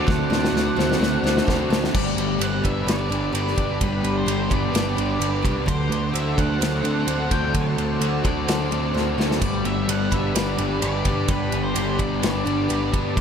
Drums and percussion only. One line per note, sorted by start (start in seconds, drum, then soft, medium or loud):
0.08 kick loud
0.08 snare medium
0.32 snare medium
0.44 snare medium
0.56 snare medium
0.79 snare medium
0.92 snare medium
1.03 snare medium
1.26 snare medium
1.37 snare medium
1.48 kick medium
1.48 snare medium
1.73 snare loud
1.84 snare medium
1.94 kick loud
1.94 crash loud
2.18 ride medium
2.41 ride medium
2.65 kick medium
2.65 ride medium
2.88 snare loud
2.88 ride medium
3.12 ride medium
3.35 ride medium
3.47 snare soft
3.58 kick medium
3.58 ride medium
3.81 kick loud
3.81 ride medium
4.04 ride medium
4.28 ride medium
4.51 kick medium
4.51 ride medium
4.75 snare loud
4.75 ride medium
4.98 ride medium
5.21 ride medium
5.45 kick medium
5.45 ride medium
5.68 kick medium
5.68 ride loud
5.92 ride medium
6.15 ride medium
6.38 kick medium
6.38 ride medium
6.62 snare loud
6.62 ride loud
6.85 ride medium
7.08 ride medium
7.31 kick medium
7.31 ride medium
7.54 kick medium
7.54 ride medium
7.78 ride medium
8.01 ride medium
8.25 kick medium
8.25 ride medium
8.48 snare loud
8.48 ride medium
8.72 ride medium
8.97 snare medium
9.20 snare medium
9.31 snare medium
9.42 kick medium
9.42 ride medium
9.42 splash medium
9.65 ride medium
9.89 ride loud
10.12 kick medium
10.12 ride medium
10.35 snare loud
10.35 ride loud
10.58 ride medium
10.82 ride medium
11.05 kick medium
11.05 ride medium
11.28 kick loud
11.28 ride medium
11.52 ride medium
11.76 ride medium
11.99 kick medium
11.99 ride medium
12.23 snare loud
12.23 ride medium
12.47 ride medium
12.70 ride medium
12.94 kick medium
12.94 ride medium
13.17 kick loud
13.17 ride medium